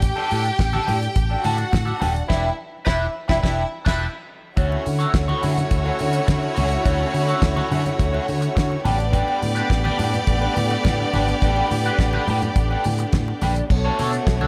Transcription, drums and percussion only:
0.02 kick, closed hi-hat, muted conga
0.17 muted conga
0.31 open hi-hat
0.45 closed hi-hat
0.59 kick, snare, closed hi-hat
0.73 muted conga, high conga
0.88 open hi-hat, low conga
1.02 closed hi-hat
1.16 kick, closed hi-hat, muted conga
1.44 open hi-hat, high conga
1.58 closed hi-hat
1.73 kick, snare, closed hi-hat, high conga
1.87 muted conga
2.02 open hi-hat, high conga, low conga
2.16 closed hi-hat
2.30 kick, snare, crash
2.87 kick, snare
3.29 kick, snare
3.44 kick, snare
3.86 kick, snare, crash
4.57 kick, closed hi-hat, muted conga
4.72 muted conga
4.86 open hi-hat, high conga
5.00 closed hi-hat
5.14 kick, snare, closed hi-hat
5.29 muted conga, high conga
5.43 open hi-hat, low conga
5.57 closed hi-hat, low conga
5.71 kick, closed hi-hat, muted conga
5.86 muted conga
5.99 open hi-hat, high conga
6.13 closed hi-hat
6.28 kick, snare, closed hi-hat, muted conga, high conga
6.43 muted conga
6.56 open hi-hat, high conga, low conga
6.72 closed hi-hat
6.86 kick, closed hi-hat, muted conga
7.14 open hi-hat, high conga
7.29 closed hi-hat
7.42 kick, snare, closed hi-hat, muted conga
7.57 muted conga, high conga
7.72 open hi-hat, low conga
7.86 closed hi-hat, low conga
7.99 kick, closed hi-hat, muted conga
8.14 muted conga
8.28 open hi-hat, high conga
8.42 closed hi-hat
8.57 kick, snare, closed hi-hat, high conga
8.72 muted conga
8.85 open hi-hat, high conga, low conga
9.00 closed hi-hat
9.13 kick, closed hi-hat
9.28 muted conga
9.42 open hi-hat, high conga
9.56 closed hi-hat
9.70 kick, snare, closed hi-hat, muted conga
9.85 muted conga, high conga
9.99 open hi-hat, low conga
10.13 closed hi-hat, low conga
10.27 kick, closed hi-hat
10.42 muted conga
10.56 open hi-hat, high conga
10.70 closed hi-hat
10.85 kick, snare, closed hi-hat, muted conga, high conga
11.13 open hi-hat, high conga, low conga
11.28 closed hi-hat
11.41 kick, closed hi-hat, muted conga
11.56 muted conga
11.71 open hi-hat, high conga
11.85 closed hi-hat
11.99 kick, snare, closed hi-hat
12.13 high conga
12.28 open hi-hat, low conga
12.42 closed hi-hat, low conga
12.56 kick, closed hi-hat, muted conga
12.71 muted conga
12.84 open hi-hat, high conga
12.98 closed hi-hat
13.13 kick, snare, closed hi-hat, high conga
13.28 muted conga
13.41 open hi-hat, high conga, low conga
13.56 closed hi-hat
13.70 kick, crash, muted conga
13.99 open hi-hat, high conga
14.13 closed hi-hat
14.27 kick, snare, closed hi-hat, muted conga
14.41 muted conga, high conga

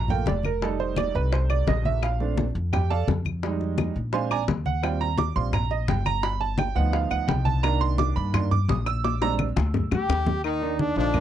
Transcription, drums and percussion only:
0.08 high bongo, high conga, low conga
0.26 high bongo, low bongo, high conga
0.43 high bongo, high conga, claves
0.61 high bongo, high conga
0.79 high bongo, high conga
0.96 high bongo, high conga, claves
1.14 high conga
1.32 high bongo, high conga
1.50 high bongo, high conga, claves
1.67 high bongo, low bongo, high conga
1.85 high conga
2.03 high bongo, high conga, claves
2.20 high bongo, high conga
2.38 high bongo, high conga
2.55 high conga
2.73 high bongo, high conga, low conga, claves
2.90 high bongo, high conga
3.08 high bongo, low bongo, high conga
3.25 high bongo, high conga, claves
3.43 high bongo, high conga
3.60 high bongo, high conga
3.78 high bongo, high conga, claves
3.95 high conga
4.13 high bongo, high conga
4.31 high bongo, high conga, claves
4.48 high bongo, low bongo, high conga
4.66 high conga
4.83 high bongo, high conga, claves
5.00 high bongo, high conga
5.18 high bongo, high conga
5.35 high conga
5.53 high bongo, high conga, low conga, claves
5.70 high bongo, high conga
5.88 high bongo, low bongo, high conga
6.05 high bongo, high conga, claves
6.23 high bongo, high conga
6.40 high bongo, high conga
6.58 high bongo, high conga, claves
6.75 high conga
6.93 high bongo, high conga
7.10 high bongo, high conga, claves
7.28 high bongo, low bongo, high conga
7.46 high conga
7.63 high bongo, high conga, claves
7.81 high bongo, high conga
7.98 high bongo, high conga
8.16 high conga
8.34 high bongo, high conga, low conga, claves
8.51 high bongo, high conga, low conga
8.69 high bongo, low bongo, high conga
8.86 high bongo, claves
9.04 high bongo, high conga
9.22 high bongo, high conga
9.39 high conga, claves
9.57 high bongo, high conga
9.74 low bongo, low conga
9.91 low bongo, low conga, claves
10.10 low bongo
10.27 low bongo, low conga
10.44 high conga, claves
10.62 high conga
10.79 high conga
10.97 high conga
11.14 high conga, low conga, claves

